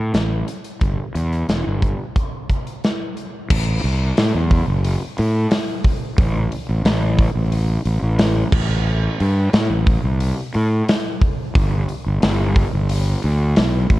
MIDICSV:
0, 0, Header, 1, 3, 480
1, 0, Start_track
1, 0, Tempo, 671141
1, 586, Time_signature, 4, 2, 24, 8
1, 10009, End_track
2, 0, Start_track
2, 0, Title_t, "Fingered electric bass"
2, 0, Program_c, 0, 33
2, 0, Note_on_c, 0, 45, 66
2, 84, Note_off_c, 0, 45, 0
2, 101, Note_on_c, 0, 33, 80
2, 297, Note_off_c, 0, 33, 0
2, 583, Note_on_c, 0, 31, 83
2, 681, Note_off_c, 0, 31, 0
2, 823, Note_on_c, 0, 40, 80
2, 1018, Note_off_c, 0, 40, 0
2, 1063, Note_on_c, 0, 28, 77
2, 1161, Note_off_c, 0, 28, 0
2, 1193, Note_on_c, 0, 31, 81
2, 1385, Note_off_c, 0, 31, 0
2, 2509, Note_on_c, 0, 33, 95
2, 2702, Note_off_c, 0, 33, 0
2, 2746, Note_on_c, 0, 36, 102
2, 2940, Note_off_c, 0, 36, 0
2, 2991, Note_on_c, 0, 45, 104
2, 3087, Note_off_c, 0, 45, 0
2, 3108, Note_on_c, 0, 40, 89
2, 3301, Note_off_c, 0, 40, 0
2, 3347, Note_on_c, 0, 30, 78
2, 3540, Note_off_c, 0, 30, 0
2, 3712, Note_on_c, 0, 45, 99
2, 3903, Note_off_c, 0, 45, 0
2, 4423, Note_on_c, 0, 33, 109
2, 4617, Note_off_c, 0, 33, 0
2, 4786, Note_on_c, 0, 33, 81
2, 4882, Note_off_c, 0, 33, 0
2, 4899, Note_on_c, 0, 33, 103
2, 5191, Note_off_c, 0, 33, 0
2, 5260, Note_on_c, 0, 33, 80
2, 5551, Note_off_c, 0, 33, 0
2, 5617, Note_on_c, 0, 33, 83
2, 5716, Note_off_c, 0, 33, 0
2, 5739, Note_on_c, 0, 33, 86
2, 6031, Note_off_c, 0, 33, 0
2, 6100, Note_on_c, 0, 33, 93
2, 6488, Note_off_c, 0, 33, 0
2, 6583, Note_on_c, 0, 43, 89
2, 6776, Note_off_c, 0, 43, 0
2, 6819, Note_on_c, 0, 45, 113
2, 6916, Note_off_c, 0, 45, 0
2, 6937, Note_on_c, 0, 33, 91
2, 7132, Note_off_c, 0, 33, 0
2, 7180, Note_on_c, 0, 36, 80
2, 7374, Note_off_c, 0, 36, 0
2, 7546, Note_on_c, 0, 45, 81
2, 7737, Note_off_c, 0, 45, 0
2, 8265, Note_on_c, 0, 31, 109
2, 8457, Note_off_c, 0, 31, 0
2, 8628, Note_on_c, 0, 31, 80
2, 8722, Note_off_c, 0, 31, 0
2, 8746, Note_on_c, 0, 31, 94
2, 9035, Note_off_c, 0, 31, 0
2, 9106, Note_on_c, 0, 31, 80
2, 9395, Note_off_c, 0, 31, 0
2, 9468, Note_on_c, 0, 38, 91
2, 9682, Note_off_c, 0, 38, 0
2, 9710, Note_on_c, 0, 35, 90
2, 9923, Note_off_c, 0, 35, 0
2, 9944, Note_on_c, 0, 33, 84
2, 10009, Note_off_c, 0, 33, 0
2, 10009, End_track
3, 0, Start_track
3, 0, Title_t, "Drums"
3, 101, Note_on_c, 9, 42, 58
3, 106, Note_on_c, 9, 38, 102
3, 172, Note_off_c, 9, 42, 0
3, 177, Note_off_c, 9, 38, 0
3, 343, Note_on_c, 9, 42, 63
3, 414, Note_off_c, 9, 42, 0
3, 461, Note_on_c, 9, 42, 51
3, 532, Note_off_c, 9, 42, 0
3, 579, Note_on_c, 9, 42, 52
3, 581, Note_on_c, 9, 36, 86
3, 651, Note_off_c, 9, 42, 0
3, 653, Note_off_c, 9, 36, 0
3, 825, Note_on_c, 9, 42, 59
3, 896, Note_off_c, 9, 42, 0
3, 947, Note_on_c, 9, 42, 48
3, 1019, Note_off_c, 9, 42, 0
3, 1064, Note_on_c, 9, 42, 59
3, 1069, Note_on_c, 9, 38, 96
3, 1136, Note_off_c, 9, 42, 0
3, 1141, Note_off_c, 9, 38, 0
3, 1304, Note_on_c, 9, 36, 83
3, 1304, Note_on_c, 9, 42, 64
3, 1375, Note_off_c, 9, 36, 0
3, 1376, Note_off_c, 9, 42, 0
3, 1544, Note_on_c, 9, 36, 104
3, 1544, Note_on_c, 9, 42, 56
3, 1615, Note_off_c, 9, 42, 0
3, 1616, Note_off_c, 9, 36, 0
3, 1784, Note_on_c, 9, 42, 51
3, 1785, Note_on_c, 9, 36, 70
3, 1855, Note_off_c, 9, 42, 0
3, 1856, Note_off_c, 9, 36, 0
3, 1908, Note_on_c, 9, 42, 51
3, 1980, Note_off_c, 9, 42, 0
3, 2030, Note_on_c, 9, 42, 50
3, 2035, Note_on_c, 9, 38, 98
3, 2101, Note_off_c, 9, 42, 0
3, 2106, Note_off_c, 9, 38, 0
3, 2266, Note_on_c, 9, 42, 53
3, 2338, Note_off_c, 9, 42, 0
3, 2506, Note_on_c, 9, 36, 109
3, 2506, Note_on_c, 9, 49, 125
3, 2577, Note_off_c, 9, 36, 0
3, 2578, Note_off_c, 9, 49, 0
3, 2745, Note_on_c, 9, 46, 66
3, 2816, Note_off_c, 9, 46, 0
3, 2985, Note_on_c, 9, 46, 89
3, 2990, Note_on_c, 9, 38, 119
3, 3056, Note_off_c, 9, 46, 0
3, 3061, Note_off_c, 9, 38, 0
3, 3226, Note_on_c, 9, 36, 98
3, 3227, Note_on_c, 9, 46, 70
3, 3297, Note_off_c, 9, 36, 0
3, 3299, Note_off_c, 9, 46, 0
3, 3465, Note_on_c, 9, 46, 92
3, 3537, Note_off_c, 9, 46, 0
3, 3704, Note_on_c, 9, 46, 78
3, 3776, Note_off_c, 9, 46, 0
3, 3940, Note_on_c, 9, 46, 97
3, 3945, Note_on_c, 9, 38, 114
3, 4012, Note_off_c, 9, 46, 0
3, 4017, Note_off_c, 9, 38, 0
3, 4179, Note_on_c, 9, 46, 71
3, 4180, Note_on_c, 9, 36, 89
3, 4251, Note_off_c, 9, 46, 0
3, 4252, Note_off_c, 9, 36, 0
3, 4421, Note_on_c, 9, 36, 115
3, 4421, Note_on_c, 9, 46, 92
3, 4492, Note_off_c, 9, 46, 0
3, 4493, Note_off_c, 9, 36, 0
3, 4663, Note_on_c, 9, 46, 72
3, 4734, Note_off_c, 9, 46, 0
3, 4900, Note_on_c, 9, 46, 82
3, 4905, Note_on_c, 9, 38, 127
3, 4971, Note_off_c, 9, 46, 0
3, 4977, Note_off_c, 9, 38, 0
3, 5138, Note_on_c, 9, 36, 96
3, 5141, Note_on_c, 9, 46, 75
3, 5210, Note_off_c, 9, 36, 0
3, 5213, Note_off_c, 9, 46, 0
3, 5379, Note_on_c, 9, 46, 98
3, 5450, Note_off_c, 9, 46, 0
3, 5618, Note_on_c, 9, 46, 67
3, 5689, Note_off_c, 9, 46, 0
3, 5856, Note_on_c, 9, 46, 86
3, 5861, Note_on_c, 9, 38, 110
3, 5928, Note_off_c, 9, 46, 0
3, 5933, Note_off_c, 9, 38, 0
3, 6097, Note_on_c, 9, 36, 112
3, 6098, Note_on_c, 9, 57, 105
3, 6168, Note_off_c, 9, 36, 0
3, 6170, Note_off_c, 9, 57, 0
3, 6581, Note_on_c, 9, 46, 67
3, 6653, Note_off_c, 9, 46, 0
3, 6818, Note_on_c, 9, 46, 79
3, 6823, Note_on_c, 9, 38, 120
3, 6889, Note_off_c, 9, 46, 0
3, 6894, Note_off_c, 9, 38, 0
3, 7056, Note_on_c, 9, 46, 71
3, 7058, Note_on_c, 9, 36, 104
3, 7128, Note_off_c, 9, 46, 0
3, 7129, Note_off_c, 9, 36, 0
3, 7298, Note_on_c, 9, 46, 97
3, 7369, Note_off_c, 9, 46, 0
3, 7539, Note_on_c, 9, 46, 68
3, 7611, Note_off_c, 9, 46, 0
3, 7785, Note_on_c, 9, 46, 96
3, 7790, Note_on_c, 9, 38, 113
3, 7856, Note_off_c, 9, 46, 0
3, 7861, Note_off_c, 9, 38, 0
3, 8020, Note_on_c, 9, 36, 98
3, 8022, Note_on_c, 9, 46, 72
3, 8092, Note_off_c, 9, 36, 0
3, 8094, Note_off_c, 9, 46, 0
3, 8262, Note_on_c, 9, 36, 119
3, 8262, Note_on_c, 9, 46, 91
3, 8333, Note_off_c, 9, 36, 0
3, 8333, Note_off_c, 9, 46, 0
3, 8501, Note_on_c, 9, 46, 63
3, 8572, Note_off_c, 9, 46, 0
3, 8742, Note_on_c, 9, 46, 96
3, 8747, Note_on_c, 9, 38, 127
3, 8814, Note_off_c, 9, 46, 0
3, 8819, Note_off_c, 9, 38, 0
3, 8981, Note_on_c, 9, 46, 81
3, 8982, Note_on_c, 9, 36, 100
3, 9052, Note_off_c, 9, 46, 0
3, 9054, Note_off_c, 9, 36, 0
3, 9220, Note_on_c, 9, 46, 102
3, 9292, Note_off_c, 9, 46, 0
3, 9458, Note_on_c, 9, 46, 75
3, 9529, Note_off_c, 9, 46, 0
3, 9700, Note_on_c, 9, 46, 90
3, 9705, Note_on_c, 9, 38, 109
3, 9771, Note_off_c, 9, 46, 0
3, 9776, Note_off_c, 9, 38, 0
3, 9940, Note_on_c, 9, 46, 66
3, 9941, Note_on_c, 9, 36, 93
3, 10009, Note_off_c, 9, 36, 0
3, 10009, Note_off_c, 9, 46, 0
3, 10009, End_track
0, 0, End_of_file